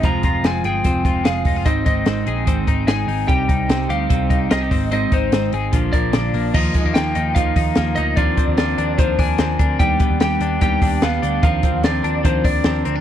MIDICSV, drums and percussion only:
0, 0, Header, 1, 2, 480
1, 0, Start_track
1, 0, Key_signature, -3, "major"
1, 0, Tempo, 407056
1, 40, Time_signature, 4, 2, 24, 8
1, 15337, End_track
2, 0, Start_track
2, 0, Title_t, "Drums"
2, 37, Note_on_c, 9, 42, 86
2, 42, Note_on_c, 9, 36, 105
2, 155, Note_off_c, 9, 42, 0
2, 160, Note_off_c, 9, 36, 0
2, 272, Note_on_c, 9, 42, 80
2, 280, Note_on_c, 9, 36, 86
2, 390, Note_off_c, 9, 42, 0
2, 398, Note_off_c, 9, 36, 0
2, 519, Note_on_c, 9, 42, 79
2, 526, Note_on_c, 9, 38, 111
2, 637, Note_off_c, 9, 42, 0
2, 644, Note_off_c, 9, 38, 0
2, 757, Note_on_c, 9, 42, 72
2, 875, Note_off_c, 9, 42, 0
2, 995, Note_on_c, 9, 42, 99
2, 1001, Note_on_c, 9, 36, 89
2, 1113, Note_off_c, 9, 42, 0
2, 1119, Note_off_c, 9, 36, 0
2, 1237, Note_on_c, 9, 36, 88
2, 1243, Note_on_c, 9, 42, 61
2, 1355, Note_off_c, 9, 36, 0
2, 1361, Note_off_c, 9, 42, 0
2, 1474, Note_on_c, 9, 42, 92
2, 1479, Note_on_c, 9, 38, 118
2, 1592, Note_off_c, 9, 42, 0
2, 1597, Note_off_c, 9, 38, 0
2, 1706, Note_on_c, 9, 46, 71
2, 1713, Note_on_c, 9, 36, 92
2, 1824, Note_off_c, 9, 46, 0
2, 1831, Note_off_c, 9, 36, 0
2, 1953, Note_on_c, 9, 42, 88
2, 1955, Note_on_c, 9, 36, 105
2, 2070, Note_off_c, 9, 42, 0
2, 2073, Note_off_c, 9, 36, 0
2, 2193, Note_on_c, 9, 42, 75
2, 2195, Note_on_c, 9, 36, 94
2, 2311, Note_off_c, 9, 42, 0
2, 2313, Note_off_c, 9, 36, 0
2, 2426, Note_on_c, 9, 42, 81
2, 2434, Note_on_c, 9, 38, 109
2, 2544, Note_off_c, 9, 42, 0
2, 2552, Note_off_c, 9, 38, 0
2, 2673, Note_on_c, 9, 42, 72
2, 2790, Note_off_c, 9, 42, 0
2, 2914, Note_on_c, 9, 42, 106
2, 2916, Note_on_c, 9, 36, 94
2, 3032, Note_off_c, 9, 42, 0
2, 3034, Note_off_c, 9, 36, 0
2, 3153, Note_on_c, 9, 36, 88
2, 3159, Note_on_c, 9, 42, 64
2, 3271, Note_off_c, 9, 36, 0
2, 3277, Note_off_c, 9, 42, 0
2, 3393, Note_on_c, 9, 42, 95
2, 3398, Note_on_c, 9, 38, 119
2, 3511, Note_off_c, 9, 42, 0
2, 3516, Note_off_c, 9, 38, 0
2, 3639, Note_on_c, 9, 46, 74
2, 3757, Note_off_c, 9, 46, 0
2, 3876, Note_on_c, 9, 36, 110
2, 3881, Note_on_c, 9, 42, 87
2, 3994, Note_off_c, 9, 36, 0
2, 3999, Note_off_c, 9, 42, 0
2, 4117, Note_on_c, 9, 36, 86
2, 4120, Note_on_c, 9, 42, 76
2, 4235, Note_off_c, 9, 36, 0
2, 4238, Note_off_c, 9, 42, 0
2, 4357, Note_on_c, 9, 42, 81
2, 4364, Note_on_c, 9, 38, 114
2, 4475, Note_off_c, 9, 42, 0
2, 4482, Note_off_c, 9, 38, 0
2, 4598, Note_on_c, 9, 42, 72
2, 4716, Note_off_c, 9, 42, 0
2, 4839, Note_on_c, 9, 36, 95
2, 4839, Note_on_c, 9, 42, 106
2, 4957, Note_off_c, 9, 36, 0
2, 4957, Note_off_c, 9, 42, 0
2, 5074, Note_on_c, 9, 36, 87
2, 5077, Note_on_c, 9, 42, 65
2, 5192, Note_off_c, 9, 36, 0
2, 5195, Note_off_c, 9, 42, 0
2, 5316, Note_on_c, 9, 42, 96
2, 5320, Note_on_c, 9, 38, 119
2, 5434, Note_off_c, 9, 42, 0
2, 5438, Note_off_c, 9, 38, 0
2, 5556, Note_on_c, 9, 36, 98
2, 5557, Note_on_c, 9, 46, 68
2, 5674, Note_off_c, 9, 36, 0
2, 5675, Note_off_c, 9, 46, 0
2, 5799, Note_on_c, 9, 42, 86
2, 5917, Note_off_c, 9, 42, 0
2, 6035, Note_on_c, 9, 42, 76
2, 6037, Note_on_c, 9, 36, 87
2, 6153, Note_off_c, 9, 42, 0
2, 6154, Note_off_c, 9, 36, 0
2, 6276, Note_on_c, 9, 42, 85
2, 6284, Note_on_c, 9, 38, 113
2, 6394, Note_off_c, 9, 42, 0
2, 6402, Note_off_c, 9, 38, 0
2, 6515, Note_on_c, 9, 42, 73
2, 6633, Note_off_c, 9, 42, 0
2, 6753, Note_on_c, 9, 42, 100
2, 6756, Note_on_c, 9, 36, 100
2, 6871, Note_off_c, 9, 42, 0
2, 6874, Note_off_c, 9, 36, 0
2, 6995, Note_on_c, 9, 36, 88
2, 6997, Note_on_c, 9, 42, 69
2, 7113, Note_off_c, 9, 36, 0
2, 7115, Note_off_c, 9, 42, 0
2, 7229, Note_on_c, 9, 42, 94
2, 7233, Note_on_c, 9, 38, 125
2, 7347, Note_off_c, 9, 42, 0
2, 7351, Note_off_c, 9, 38, 0
2, 7475, Note_on_c, 9, 46, 71
2, 7593, Note_off_c, 9, 46, 0
2, 7717, Note_on_c, 9, 36, 121
2, 7718, Note_on_c, 9, 49, 102
2, 7835, Note_off_c, 9, 36, 0
2, 7836, Note_off_c, 9, 49, 0
2, 7950, Note_on_c, 9, 46, 78
2, 7952, Note_on_c, 9, 44, 68
2, 7957, Note_on_c, 9, 36, 94
2, 8067, Note_off_c, 9, 46, 0
2, 8070, Note_off_c, 9, 44, 0
2, 8075, Note_off_c, 9, 36, 0
2, 8196, Note_on_c, 9, 46, 86
2, 8198, Note_on_c, 9, 44, 65
2, 8203, Note_on_c, 9, 38, 114
2, 8314, Note_off_c, 9, 46, 0
2, 8316, Note_off_c, 9, 44, 0
2, 8321, Note_off_c, 9, 38, 0
2, 8433, Note_on_c, 9, 46, 76
2, 8435, Note_on_c, 9, 44, 65
2, 8551, Note_off_c, 9, 46, 0
2, 8553, Note_off_c, 9, 44, 0
2, 8676, Note_on_c, 9, 44, 70
2, 8676, Note_on_c, 9, 46, 113
2, 8679, Note_on_c, 9, 36, 97
2, 8794, Note_off_c, 9, 44, 0
2, 8794, Note_off_c, 9, 46, 0
2, 8797, Note_off_c, 9, 36, 0
2, 8915, Note_on_c, 9, 36, 98
2, 8916, Note_on_c, 9, 44, 66
2, 8918, Note_on_c, 9, 46, 66
2, 9033, Note_off_c, 9, 36, 0
2, 9034, Note_off_c, 9, 44, 0
2, 9035, Note_off_c, 9, 46, 0
2, 9143, Note_on_c, 9, 46, 101
2, 9147, Note_on_c, 9, 38, 123
2, 9147, Note_on_c, 9, 44, 74
2, 9261, Note_off_c, 9, 46, 0
2, 9265, Note_off_c, 9, 38, 0
2, 9265, Note_off_c, 9, 44, 0
2, 9383, Note_on_c, 9, 46, 71
2, 9386, Note_on_c, 9, 44, 62
2, 9501, Note_off_c, 9, 46, 0
2, 9504, Note_off_c, 9, 44, 0
2, 9632, Note_on_c, 9, 46, 92
2, 9633, Note_on_c, 9, 44, 67
2, 9635, Note_on_c, 9, 36, 123
2, 9750, Note_off_c, 9, 46, 0
2, 9751, Note_off_c, 9, 44, 0
2, 9753, Note_off_c, 9, 36, 0
2, 9875, Note_on_c, 9, 46, 80
2, 9876, Note_on_c, 9, 36, 94
2, 9877, Note_on_c, 9, 44, 66
2, 9993, Note_off_c, 9, 36, 0
2, 9993, Note_off_c, 9, 46, 0
2, 9995, Note_off_c, 9, 44, 0
2, 10111, Note_on_c, 9, 46, 90
2, 10114, Note_on_c, 9, 44, 69
2, 10119, Note_on_c, 9, 38, 117
2, 10229, Note_off_c, 9, 46, 0
2, 10232, Note_off_c, 9, 44, 0
2, 10237, Note_off_c, 9, 38, 0
2, 10357, Note_on_c, 9, 46, 77
2, 10359, Note_on_c, 9, 44, 70
2, 10475, Note_off_c, 9, 46, 0
2, 10477, Note_off_c, 9, 44, 0
2, 10595, Note_on_c, 9, 44, 73
2, 10595, Note_on_c, 9, 46, 105
2, 10597, Note_on_c, 9, 36, 103
2, 10713, Note_off_c, 9, 44, 0
2, 10713, Note_off_c, 9, 46, 0
2, 10715, Note_off_c, 9, 36, 0
2, 10835, Note_on_c, 9, 36, 96
2, 10836, Note_on_c, 9, 44, 64
2, 10837, Note_on_c, 9, 46, 71
2, 10953, Note_off_c, 9, 36, 0
2, 10953, Note_off_c, 9, 44, 0
2, 10955, Note_off_c, 9, 46, 0
2, 11065, Note_on_c, 9, 46, 101
2, 11069, Note_on_c, 9, 44, 73
2, 11070, Note_on_c, 9, 38, 126
2, 11183, Note_off_c, 9, 46, 0
2, 11187, Note_off_c, 9, 44, 0
2, 11188, Note_off_c, 9, 38, 0
2, 11313, Note_on_c, 9, 46, 76
2, 11314, Note_on_c, 9, 36, 95
2, 11317, Note_on_c, 9, 44, 64
2, 11431, Note_off_c, 9, 46, 0
2, 11432, Note_off_c, 9, 36, 0
2, 11435, Note_off_c, 9, 44, 0
2, 11552, Note_on_c, 9, 46, 91
2, 11553, Note_on_c, 9, 44, 68
2, 11554, Note_on_c, 9, 36, 117
2, 11670, Note_off_c, 9, 46, 0
2, 11671, Note_off_c, 9, 44, 0
2, 11672, Note_off_c, 9, 36, 0
2, 11787, Note_on_c, 9, 46, 81
2, 11789, Note_on_c, 9, 44, 65
2, 11794, Note_on_c, 9, 36, 103
2, 11905, Note_off_c, 9, 46, 0
2, 11907, Note_off_c, 9, 44, 0
2, 11911, Note_off_c, 9, 36, 0
2, 12030, Note_on_c, 9, 46, 85
2, 12033, Note_on_c, 9, 44, 72
2, 12038, Note_on_c, 9, 38, 122
2, 12148, Note_off_c, 9, 46, 0
2, 12151, Note_off_c, 9, 44, 0
2, 12156, Note_off_c, 9, 38, 0
2, 12270, Note_on_c, 9, 46, 74
2, 12272, Note_on_c, 9, 44, 67
2, 12388, Note_off_c, 9, 46, 0
2, 12390, Note_off_c, 9, 44, 0
2, 12514, Note_on_c, 9, 44, 71
2, 12514, Note_on_c, 9, 46, 103
2, 12520, Note_on_c, 9, 36, 98
2, 12631, Note_off_c, 9, 46, 0
2, 12632, Note_off_c, 9, 44, 0
2, 12638, Note_off_c, 9, 36, 0
2, 12756, Note_on_c, 9, 36, 90
2, 12757, Note_on_c, 9, 44, 66
2, 12759, Note_on_c, 9, 46, 69
2, 12874, Note_off_c, 9, 36, 0
2, 12875, Note_off_c, 9, 44, 0
2, 12877, Note_off_c, 9, 46, 0
2, 12993, Note_on_c, 9, 46, 97
2, 12997, Note_on_c, 9, 38, 127
2, 12997, Note_on_c, 9, 44, 69
2, 13111, Note_off_c, 9, 46, 0
2, 13115, Note_off_c, 9, 38, 0
2, 13115, Note_off_c, 9, 44, 0
2, 13242, Note_on_c, 9, 46, 73
2, 13245, Note_on_c, 9, 44, 64
2, 13360, Note_off_c, 9, 46, 0
2, 13363, Note_off_c, 9, 44, 0
2, 13478, Note_on_c, 9, 36, 122
2, 13478, Note_on_c, 9, 46, 94
2, 13479, Note_on_c, 9, 44, 73
2, 13596, Note_off_c, 9, 36, 0
2, 13596, Note_off_c, 9, 46, 0
2, 13597, Note_off_c, 9, 44, 0
2, 13714, Note_on_c, 9, 46, 79
2, 13716, Note_on_c, 9, 44, 68
2, 13718, Note_on_c, 9, 36, 94
2, 13832, Note_off_c, 9, 46, 0
2, 13834, Note_off_c, 9, 44, 0
2, 13836, Note_off_c, 9, 36, 0
2, 13956, Note_on_c, 9, 46, 83
2, 13959, Note_on_c, 9, 44, 72
2, 13963, Note_on_c, 9, 38, 114
2, 14074, Note_off_c, 9, 46, 0
2, 14077, Note_off_c, 9, 44, 0
2, 14081, Note_off_c, 9, 38, 0
2, 14201, Note_on_c, 9, 46, 77
2, 14203, Note_on_c, 9, 44, 67
2, 14318, Note_off_c, 9, 46, 0
2, 14320, Note_off_c, 9, 44, 0
2, 14441, Note_on_c, 9, 36, 92
2, 14443, Note_on_c, 9, 44, 68
2, 14443, Note_on_c, 9, 46, 117
2, 14559, Note_off_c, 9, 36, 0
2, 14561, Note_off_c, 9, 44, 0
2, 14561, Note_off_c, 9, 46, 0
2, 14675, Note_on_c, 9, 36, 95
2, 14675, Note_on_c, 9, 44, 73
2, 14677, Note_on_c, 9, 46, 69
2, 14793, Note_off_c, 9, 36, 0
2, 14793, Note_off_c, 9, 44, 0
2, 14795, Note_off_c, 9, 46, 0
2, 14905, Note_on_c, 9, 46, 101
2, 14909, Note_on_c, 9, 44, 73
2, 14910, Note_on_c, 9, 38, 122
2, 15023, Note_off_c, 9, 46, 0
2, 15027, Note_off_c, 9, 44, 0
2, 15028, Note_off_c, 9, 38, 0
2, 15156, Note_on_c, 9, 46, 71
2, 15159, Note_on_c, 9, 44, 64
2, 15273, Note_off_c, 9, 46, 0
2, 15277, Note_off_c, 9, 44, 0
2, 15337, End_track
0, 0, End_of_file